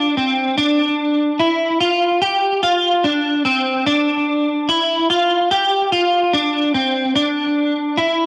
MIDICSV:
0, 0, Header, 1, 2, 480
1, 0, Start_track
1, 0, Tempo, 821918
1, 339, Time_signature, 4, 2, 24, 8
1, 4824, End_track
2, 0, Start_track
2, 0, Title_t, "Clean electric guitar"
2, 0, Program_c, 0, 27
2, 0, Note_on_c, 0, 62, 89
2, 98, Note_off_c, 0, 62, 0
2, 100, Note_on_c, 0, 60, 71
2, 334, Note_off_c, 0, 60, 0
2, 336, Note_on_c, 0, 62, 94
2, 816, Note_on_c, 0, 64, 83
2, 818, Note_off_c, 0, 62, 0
2, 1053, Note_off_c, 0, 64, 0
2, 1055, Note_on_c, 0, 65, 81
2, 1293, Note_off_c, 0, 65, 0
2, 1295, Note_on_c, 0, 67, 81
2, 1533, Note_off_c, 0, 67, 0
2, 1536, Note_on_c, 0, 65, 86
2, 1777, Note_off_c, 0, 65, 0
2, 1777, Note_on_c, 0, 62, 80
2, 2013, Note_off_c, 0, 62, 0
2, 2015, Note_on_c, 0, 60, 79
2, 2254, Note_off_c, 0, 60, 0
2, 2256, Note_on_c, 0, 62, 104
2, 2737, Note_on_c, 0, 64, 84
2, 2738, Note_off_c, 0, 62, 0
2, 2975, Note_off_c, 0, 64, 0
2, 2978, Note_on_c, 0, 65, 88
2, 3215, Note_off_c, 0, 65, 0
2, 3217, Note_on_c, 0, 67, 85
2, 3455, Note_off_c, 0, 67, 0
2, 3457, Note_on_c, 0, 65, 87
2, 3698, Note_off_c, 0, 65, 0
2, 3699, Note_on_c, 0, 62, 90
2, 3937, Note_off_c, 0, 62, 0
2, 3939, Note_on_c, 0, 60, 72
2, 4177, Note_off_c, 0, 60, 0
2, 4179, Note_on_c, 0, 62, 94
2, 4657, Note_on_c, 0, 64, 84
2, 4659, Note_off_c, 0, 62, 0
2, 4824, Note_off_c, 0, 64, 0
2, 4824, End_track
0, 0, End_of_file